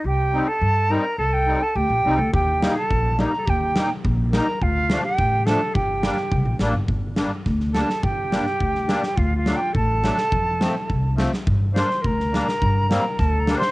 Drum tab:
SD |--------|--------|--o---oo|--o---o-|
BD |--------|--------|o---o---|o---o---|

SD |--o---o-|--oo--o-|--o-oooo|--oo-ooo|
BD |o---o---|o---o---|o---o---|o---o---|

SD |--o---oo|--o---oo|--oo-ooo|--o-o-oo|
BD |o---o---|o---o---|o---o---|o---o---|